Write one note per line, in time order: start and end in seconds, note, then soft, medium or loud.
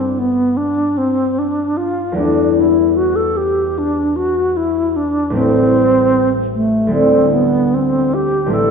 0.00 2.19 G2 medium
0.00 2.13 G3 soft
0.00 2.14 A3 soft
0.00 2.15 B3 soft
0.00 0.20 C4 medium
0.00 2.22 F4 soft
0.19 0.58 B3 medium
0.57 0.99 D4 medium
0.98 1.40 C4 medium
1.39 1.79 D4 medium
1.77 2.17 F4 medium
2.12 5.36 E2 medium
2.12 5.31 G3 soft
2.12 5.31 A3 soft
2.16 5.38 B3 soft
2.16 2.57 D4 medium
2.16 5.34 E4 soft
2.58 2.98 E4 medium
2.97 3.17 F#4 medium
3.16 3.38 A4 medium
3.37 3.80 G4 medium
3.78 4.18 D4 medium
4.16 4.58 F#4 medium
4.57 4.98 E4 medium
4.96 5.35 D4 medium
5.30 6.94 A1 medium
5.30 6.87 G3 soft
5.30 6.88 A3 soft
5.30 8.49 C4 soft
5.35 6.30 C4 medium
5.35 6.91 E4 soft
6.55 6.94 A3 medium
6.87 8.52 D2 medium
6.87 8.46 G3 soft
6.87 8.48 A3 soft
6.87 8.54 D4 soft
6.92 7.34 C4 medium
6.92 8.49 E4 soft
7.33 7.76 B3 medium
7.74 8.16 C4 medium
8.14 8.52 G4 medium
8.46 8.71 A1 medium
8.46 8.71 G3 soft
8.46 8.71 A3 soft
8.46 8.71 C4 soft
8.51 8.71 E4 soft
8.51 8.71 A4 medium